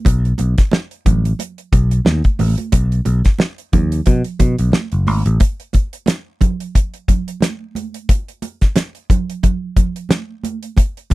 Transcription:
0.05 B1, kick, closed hi-hat, muted conga
0.25 closed hi-hat
0.38 B1, closed hi-hat, muted conga
0.58 kick, snare, closed hi-hat
0.71 snare, high conga
0.91 closed hi-hat
1.06 A1, kick, closed hi-hat, low conga
1.25 closed hi-hat
1.39 closed hi-hat, muted conga
1.58 closed hi-hat
1.72 B1, kick, closed hi-hat, muted conga
1.91 closed hi-hat
2.05 D#2, snare, high conga
2.24 kick, closed hi-hat
2.39 A1, open hi-hat, high conga
2.58 closed hi-hat, high conga
2.72 B1, kick, closed hi-hat, muted conga
2.92 closed hi-hat
3.05 B1, closed hi-hat, muted conga
3.25 kick, snare, closed hi-hat
3.39 snare, high conga
3.58 closed hi-hat
3.73 D#2, kick, closed hi-hat, low conga
3.92 closed hi-hat
4.06 B2, kick, closed hi-hat, muted conga, low conga
4.24 closed hi-hat
4.39 B2, kick, closed hi-hat, muted conga, low conga
4.58 B1, closed hi-hat
4.72 snare, high conga
4.92 F#1, closed hi-hat
5.07 G#1, open hi-hat, high conga
5.26 A1, closed hi-hat
5.40 kick, closed hi-hat, muted conga
5.60 closed hi-hat
5.73 kick, closed hi-hat, muted conga
5.93 closed hi-hat
6.06 snare, closed hi-hat, high conga
6.41 kick, closed hi-hat, low conga
6.60 closed hi-hat
6.75 kick, closed hi-hat, muted conga
6.94 closed hi-hat
7.08 kick, closed hi-hat, muted conga, low conga
7.28 closed hi-hat
7.41 snare, closed hi-hat, high conga
7.75 closed hi-hat, high conga
7.94 closed hi-hat
8.09 kick, closed hi-hat, muted conga
8.28 closed hi-hat
8.42 closed hi-hat, muted conga
8.61 kick, snare, closed hi-hat
8.76 snare, closed hi-hat, high conga
8.95 closed hi-hat
9.10 kick, closed hi-hat, low conga
9.30 closed hi-hat
9.43 kick, closed hi-hat, muted conga, low conga
9.76 kick, closed hi-hat, muted conga, low conga
9.96 closed hi-hat
10.09 snare, closed hi-hat, high conga
10.44 closed hi-hat, high conga
10.63 closed hi-hat
10.77 kick, closed hi-hat, muted conga
10.97 closed hi-hat
11.10 closed hi-hat, muted conga

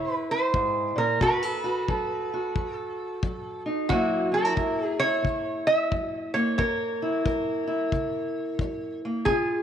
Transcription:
Already playing: C#3 E4 C#5
0.15 B4
0.31 C5
0.54 G#2, kick
0.96 A#2 A#4
1.21 B2 F#4 B4, kick
1.43 A4
1.64 F#4
1.88 F#3 A4, kick
2.34 F#4
2.56 F#3, kick
2.76 A4
3.23 F#3, kick
3.66 D#4
3.89 F#2 F#3 A#3 E4 F#4, kick
4.32 C#4 A#4
4.45 E4
4.56 F#3 E4, kick
4.86 G#4
4.99 E4 C#5
5.22 C#3, kick
5.67 E5
5.92 F#3, kick
6.34 A#3 C#5
6.58 F#2 A#4 C#5, kick
7.02 E4
7.25 F#3 A#4, kick
7.67 E4
7.92 C#3, kick
8.59 F#3, kick
9.05 A#3
9.25 C#3 F4 G#4, kick

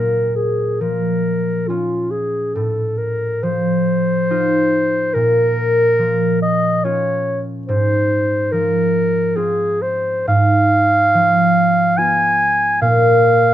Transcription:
Already playing: A#2 A#3 A#4
0.36 G#4
0.81 F3 A#4
1.68 C#4 F4
2.11 G#4
2.55 A2 A4
2.98 A#4
3.43 F3 C5
4.30 D#4 F4
5.14 A#2 A#4
5.99 F3
6.42 D#5
6.85 C#4 F4 C#5
7.68 G#2 C5
8.52 F3 A#4
9.35 C4 F4 G#4
9.82 C5
10.27 G#2 F5
11.14 F3
11.97 B3 F4 G#5
12.81 A#2 F5

